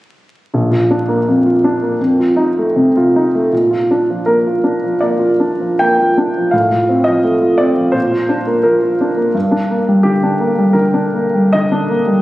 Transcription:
0.54 1.95 A#1 soft
0.71 1.00 F4 soft
0.91 1.19 D4 soft
1.08 1.37 A#3 soft
1.28 1.56 F2 soft
1.46 1.74 F4 soft
1.64 1.92 D4 soft
1.82 1.99 A#3 soft
2.00 3.49 F2 soft
2.20 2.48 F4 soft
2.36 2.66 D#4 soft
2.58 2.87 A3 soft
2.76 3.06 C3 soft
2.97 3.27 F4 soft
3.16 3.46 D#4 soft
3.35 3.53 A3 soft
3.53 4.96 A#2 soft
3.71 4.00 F4 soft
3.91 4.19 D4 soft
4.10 4.38 F3 soft
4.26 4.56 A#3 soft
4.26 5.00 A#4 soft
4.47 4.75 F4 soft
4.64 4.93 D4 soft
4.83 5.13 F3 soft
5.01 5.33 A#3 soft
5.01 5.79 D5 soft
5.19 5.52 F4 soft
5.40 5.72 D4 soft
5.61 5.91 F3 soft
5.79 6.10 A#3 soft
5.79 6.53 G5 medium
6.00 6.28 F4 soft
6.18 6.46 D4 soft
6.37 6.54 F3 soft
6.51 7.91 A2 soft
6.51 7.05 F5 soft
6.72 6.99 F4 soft
6.89 7.17 C4 soft
7.04 7.34 F3 soft
7.04 7.58 D#5 medium
7.23 7.52 A3 soft
7.42 7.70 F4 soft
7.58 7.88 C4 soft
7.58 7.94 D5 medium
7.77 7.94 F3 soft
7.92 9.30 A#2 soft
7.92 8.63 C5 soft
8.12 8.40 F4 soft
8.29 8.57 D4 soft
8.47 8.75 A#3 soft
8.63 8.93 F3 soft
8.63 9.34 A#4 soft
8.83 9.10 F4 soft
9.01 9.28 D4 soft
9.17 9.34 A#3 soft
9.34 10.73 G2 soft
9.51 9.80 D4 soft
9.70 9.98 A#3 soft
9.88 10.16 G3 soft
10.03 10.34 D3 soft
10.03 10.76 G4 soft
10.23 10.52 D4 soft
10.40 10.69 A#3 soft
10.58 10.87 G3 soft
10.73 11.06 D3 soft
10.73 11.52 A#4 soft
10.94 11.26 D4 soft
11.14 11.46 A#3 soft
11.34 11.65 G3 soft
11.53 11.84 D3 soft
11.53 12.22 D#5 medium
11.72 12.00 D4 soft
11.90 12.18 A#3 soft
12.06 12.22 G3 soft

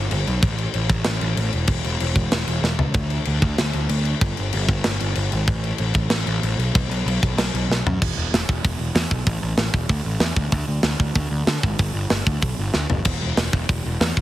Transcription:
0.11 0.23 G1 loud
0.11 crash medium
0.27 0.39 B1 medium
0.27 crash medium
0.42 0.66 A1 medium
0.42 kick loud
0.42 crash medium
0.58 crash medium
0.74 0.86 A1 medium
0.74 crash medium
0.90 1.02 A1 medium
0.90 kick medium
0.90 crash medium
1.05 1.17 A1 medium
1.05 snare loud
1.05 crash medium
1.21 1.33 A1 medium
1.21 crash medium
1.37 1.49 A1 loud
1.37 crash medium
1.53 1.65 E1 medium
1.53 crash medium
1.67 1.80 E1 loud
1.67 kick loud
1.67 crash medium
1.84 1.96 E1 medium
1.84 crash medium
2.00 2.13 E1 medium
2.00 crash medium
2.15 2.27 E1 medium
2.15 kick medium
2.15 crash medium
2.32 2.44 E1 medium
2.32 snare loud
2.32 crash medium
2.47 2.59 E1 medium
2.47 crash medium
2.62 2.75 E1 loud
2.62 snare medium
2.78 2.90 C#2 medium
2.78 floor tom medium
2.94 3.18 D2 loud
2.94 kick loud
2.94 crash medium
3.10 crash medium
3.25 3.39 D2 medium
3.25 crash medium
3.42 3.54 D2 medium
3.42 kick medium
3.42 crash medium
3.58 3.71 D2 medium
3.58 snare loud
3.58 crash medium
3.73 3.86 D2 medium
3.73 crash medium
3.89 4.13 D2 loud
3.89 crash medium
4.05 crash medium
4.21 4.33 G1 loud
4.21 kick loud
4.21 crash medium
4.37 4.50 G1 medium
4.37 crash medium
4.53 4.66 G1 medium
4.53 crash medium
4.68 4.80 G1 medium
4.68 kick medium
4.68 crash medium
4.84 4.97 G1 medium
4.84 snare loud
4.84 crash medium
5.00 5.13 G1 medium
5.00 crash medium
5.15 5.28 G1 loud
5.15 crash medium
5.32 5.44 G#1 loud
5.32 crash medium
5.48 5.71 A1 loud
5.48 kick loud
5.48 crash medium
5.64 crash medium
5.78 5.91 A1 medium
5.78 crash medium
5.94 6.07 A1 medium
5.94 kick medium
5.94 crash medium
6.10 6.23 A1 medium
6.10 snare loud
6.10 crash medium
6.26 6.38 A1 medium
6.26 crash medium
6.42 6.54 A1 loud
6.42 crash medium
6.58 6.70 B1 medium
6.58 crash medium
6.75 6.87 B1 loud
6.75 kick loud
6.75 crash medium
6.89 7.01 B1 medium
6.89 crash medium
7.06 7.18 B1 loud
7.06 crash medium
7.23 7.34 B1 medium
7.23 kick medium
7.23 crash medium
7.37 7.49 B1 medium
7.37 snare loud
7.37 crash medium
7.54 7.65 B1 medium
7.54 crash medium
7.69 7.81 B1 loud
7.69 snare medium
7.86 7.97 F#2 medium
7.86 floor tom medium
8.01 8.11 E1 medium
8.01 kick loud
8.01 crash loud
8.16 8.26 E1 medium
8.33 8.43 E1 medium
8.33 snare loud
8.33 open hi-hat medium
8.49 8.59 E1 medium
8.49 kick medium
8.64 8.74 E1 medium
8.64 kick loud
8.64 open hi-hat medium
8.79 8.89 E1 medium
8.95 9.05 E2 loud
8.95 snare loud
8.95 open hi-hat medium
9.11 9.21 B1 medium
9.11 kick medium
9.27 9.37 A1 loud
9.27 kick loud
9.27 open hi-hat medium
9.42 9.53 A1 medium
9.57 9.68 A1 medium
9.57 snare loud
9.57 open hi-hat medium
9.74 9.84 E1 medium
9.74 kick medium
9.89 10.00 D2 medium
9.89 kick loud
9.89 open hi-hat medium
10.05 10.15 A1 medium
10.20 10.31 E2 loud
10.20 snare loud
10.20 open hi-hat medium
10.36 10.47 D2 loud
10.36 kick medium
10.52 10.63 D2 loud
10.52 kick loud
10.52 open hi-hat medium
10.68 10.78 D2 medium
10.83 10.94 D2 medium
10.83 snare loud
10.83 open hi-hat medium
10.99 11.10 D2 medium
10.99 kick medium
11.15 11.26 D2 medium
11.15 kick loud
11.15 open hi-hat medium
11.30 11.41 D2 medium
11.47 11.57 D3 medium
11.47 snare loud
11.47 open hi-hat medium
11.63 11.74 G#1 loud
11.63 kick medium
11.79 11.89 G1 loud
11.79 kick loud
11.79 open hi-hat medium
11.94 12.05 G1 medium
12.10 12.21 G1 medium
12.10 snare loud
12.10 open hi-hat medium
12.27 12.37 D2 medium
12.27 kick medium
12.42 12.52 B1 loud
12.42 kick loud
12.42 open hi-hat medium
12.59 12.69 G1 medium
12.74 12.85 D2 medium
12.74 snare medium
12.90 13.00 F#1 medium
12.90 floor tom medium
13.05 13.16 E1 loud
13.05 kick loud
13.05 splash medium
13.05 crash medium
13.21 13.31 E1 medium
13.37 13.48 E1 medium
13.37 snare loud
13.37 open hi-hat medium
13.53 13.64 E1 medium
13.53 kick medium
13.69 13.79 E1 medium
13.69 kick loud
13.69 open hi-hat medium
13.85 13.96 E1 medium
14.00 14.11 E2 loud
14.00 snare loud
14.00 open hi-hat medium
14.17 14.21 E1 medium
14.17 kick medium

